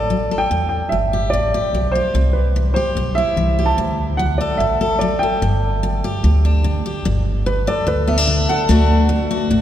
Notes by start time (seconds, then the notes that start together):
Already playing: A1 A4 D5
0.10 F#3
0.31 A4
0.38 G5
0.51 E2
0.69 G5
0.89 G1 G3 E5
1.13 G4
1.30 A1 E2 D5
1.54 G4
1.73 B1 G3
1.92 G4 C5
2.14 C2 C3
2.33 B4
2.56 E3
2.74 G4 C5
2.95 B1 G2
3.15 E4 E5
3.37 C2 E3
3.59 G4
3.66 A5
3.77 D2 D3
4.17 F#3 F#5
4.38 A4 D5
4.57 A1 A2 E5
4.81 A4
4.99 F#3 D5
5.19 A4 G5
5.42 G1 G2
5.83 D3
6.04 G4
6.23 D2 D3
6.45 D4
6.64 D3
6.86 G4
7.05 G1 G2
7.46 D3 B4
7.67 A4 D5
7.87 D2 D3 B4
8.07 B3 E5
8.18 D4
8.27 D3
8.49 A4 F#5
8.69 D2 D3 A3 D4 F#4
9.09 A3
9.31 F#4
9.50 A1 A2